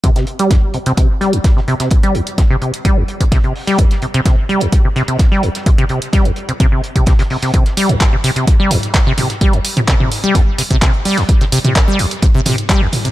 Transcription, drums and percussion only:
0.04 kick loud
0.04 closed hi-hat medium
0.16 snare medium
0.16 closed hi-hat soft
0.27 closed hi-hat medium
0.39 closed hi-hat medium
0.51 kick loud
0.51 snare loud
0.51 closed hi-hat medium
0.74 closed hi-hat medium
0.86 closed hi-hat soft
0.97 kick loud
0.97 closed hi-hat medium
1.21 snare soft
1.21 closed hi-hat medium
1.33 closed hi-hat soft
1.44 kick loud
1.44 snare loud
1.44 closed hi-hat medium
1.57 snare soft
1.68 closed hi-hat medium
1.80 snare soft
1.80 closed hi-hat medium
1.91 kick loud
1.91 closed hi-hat medium
2.03 closed hi-hat soft
2.15 closed hi-hat medium
2.27 closed hi-hat medium
2.38 kick loud
2.38 snare loud
2.38 closed hi-hat medium
2.62 closed hi-hat medium
2.74 closed hi-hat medium
2.85 kick loud
2.85 closed hi-hat medium
3.08 closed hi-hat medium
3.21 kick medium
3.21 closed hi-hat medium
3.32 kick loud
3.32 snare loud
3.32 closed hi-hat medium
3.44 closed hi-hat soft
3.56 open hi-hat medium
3.67 snare soft
3.67 closed hi-hat medium
3.78 kick loud
3.78 closed hi-hat medium
3.91 snare medium
3.91 closed hi-hat soft
4.02 closed hi-hat medium
4.14 closed hi-hat soft
4.25 kick loud
4.25 snare loud
4.25 closed hi-hat medium
4.49 closed hi-hat medium
4.61 closed hi-hat soft
4.72 kick loud
4.72 closed hi-hat medium
4.96 snare soft
4.96 closed hi-hat medium
5.08 closed hi-hat soft
5.19 kick loud
5.19 snare loud
5.19 closed hi-hat medium
5.32 snare soft
5.43 closed hi-hat medium
5.55 snare medium
5.55 closed hi-hat soft
5.66 kick loud
5.66 closed hi-hat medium
5.78 closed hi-hat soft
5.89 closed hi-hat medium
6.02 closed hi-hat soft
6.13 kick loud
6.13 snare loud
6.13 closed hi-hat medium
6.25 closed hi-hat soft
6.36 closed hi-hat medium
6.49 closed hi-hat soft
6.60 kick loud
6.60 closed hi-hat medium
6.84 closed hi-hat medium
6.96 kick medium
6.96 closed hi-hat soft
7.06 kick loud
7.06 snare loud
7.06 closed hi-hat medium
7.19 snare loud
7.19 closed hi-hat medium
7.30 open hi-hat medium
7.42 snare soft
7.42 closed hi-hat soft
7.54 kick loud
7.54 closed hi-hat medium
7.66 snare medium
7.66 closed hi-hat soft
7.77 closed hi-hat medium
7.77 open hi-hat loud
7.89 closed hi-hat soft
7.89 mid tom medium
8.01 kick loud
8.01 snare loud
8.01 clap loud
8.01 closed hi-hat medium
8.24 closed hi-hat medium
8.24 open hi-hat medium
8.36 closed hi-hat medium
8.36 closed hi-hat soft
8.47 kick loud
8.47 closed hi-hat medium
8.71 snare soft
8.71 closed hi-hat medium
8.71 mid tom medium
8.71 open hi-hat loud
8.83 closed hi-hat soft
8.94 kick loud
8.94 snare loud
8.94 clap loud
8.94 closed hi-hat medium
9.06 snare soft
9.18 closed hi-hat medium
9.18 mid tom medium
9.18 open hi-hat medium
9.30 snare medium
9.30 closed hi-hat soft
9.41 kick loud
9.41 closed hi-hat medium
9.53 closed hi-hat soft
9.65 closed hi-hat medium
9.65 open hi-hat loud
9.77 closed hi-hat medium
9.77 mid tom loud
9.87 kick loud
9.87 snare loud
9.87 clap loud
9.87 closed hi-hat medium
10.00 mid tom medium
10.12 closed hi-hat medium
10.12 open hi-hat medium
10.24 closed hi-hat medium
10.35 kick loud
10.35 closed hi-hat medium
10.58 closed hi-hat medium
10.58 open hi-hat loud
10.71 kick medium
10.71 closed hi-hat medium
10.81 kick loud
10.81 snare loud
10.81 clap loud
10.81 closed hi-hat medium
10.94 closed hi-hat soft
11.05 open hi-hat medium
11.17 snare medium
11.17 closed hi-hat medium
11.29 kick loud
11.29 closed hi-hat medium
11.41 snare medium
11.41 closed hi-hat soft
11.52 closed hi-hat medium
11.52 open hi-hat loud
11.65 closed hi-hat medium
11.65 mid tom medium
11.75 kick loud
11.75 snare loud
11.75 clap loud
11.75 closed hi-hat medium
11.99 closed hi-hat medium
11.99 open hi-hat medium
12.11 closed hi-hat soft
12.11 closed hi-hat medium
12.22 kick loud
12.22 closed hi-hat medium
12.46 snare loud
12.46 closed hi-hat medium
12.46 mid tom medium
12.46 open hi-hat loud
12.58 closed hi-hat medium
12.69 kick loud
12.69 snare loud
12.69 clap loud
12.69 closed hi-hat medium
12.82 snare soft
12.93 closed hi-hat medium
12.93 mid tom medium
12.93 open hi-hat medium
13.05 closed hi-hat medium

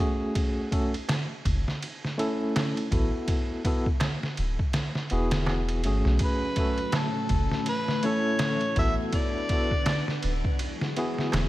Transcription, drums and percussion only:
0.35 kick loud
0.35 ride medium
0.72 kick loud
0.72 ride medium
0.94 ride soft
1.09 snare loud
1.09 ride medium
1.09 darbuka tek medium
1.45 kick medium
1.45 ride medium
1.68 snare soft
1.83 ride medium
2.05 snare soft
2.19 ride medium
2.56 snare loud
2.56 ride medium
2.56 darbuka tek medium
2.77 ride soft
2.92 kick medium
2.92 ride medium
3.28 kick loud
3.28 ride medium
3.65 kick loud
3.65 ride medium
3.86 kick medium
4.00 snare loud
4.00 ride medium
4.00 darbuka tek medium
4.23 snare soft
4.37 ride medium
4.59 kick medium
4.73 snare loud
4.73 ride medium
4.95 snare soft
5.10 ride medium
5.31 snare loud
5.31 ride medium
5.47 snare soft
5.47 darbuka tek medium
5.69 ride medium
5.84 ride medium
6.05 snare soft
6.19 kick loud
6.19 ride medium
6.56 kick medium
6.56 ride medium
6.78 ride soft
6.92 snare loud
6.92 ride medium
6.92 darbuka tek medium
7.29 kick medium
7.29 ride medium
7.51 snare soft
7.66 ride medium
7.88 snare soft
8.03 ride medium
8.39 snare loud
8.39 ride medium
8.39 darbuka tek medium
8.61 ride soft
8.76 kick medium
8.76 ride medium
9.13 kick loud
9.13 ride medium
9.49 kick loud
9.49 ride medium
9.71 kick medium
9.86 snare loud
9.86 ride medium
9.86 darbuka tek medium
10.08 snare soft
10.23 ride medium
10.45 kick medium
10.59 ride medium
10.81 snare soft
10.96 ride medium
11.18 snare soft
11.32 snare loud
11.32 ride medium
11.32 darbuka tek medium

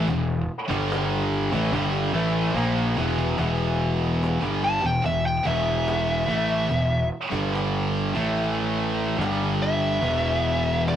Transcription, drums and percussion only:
0.08 cajon bass medium
0.70 cajon bass loud
0.92 cajon slap loud
1.52 cajon bass loud
1.73 cajon bass loud
2.57 cajon slap medium
2.97 cajon bass medium
3.18 cajon bass medium
3.38 cajon bass loud
4.23 cajon slap loud
4.42 cajon bass loud
5.04 cajon bass medium
5.45 cajon bass loud
5.88 cajon slap loud
6.28 cajon bass loud
6.69 cajon bass loud
7.32 cajon bass loud
7.55 cajon slap loud
8.15 cajon bass medium
9.22 cajon slap loud
10.02 cajon bass loud
10.88 cajon slap loud

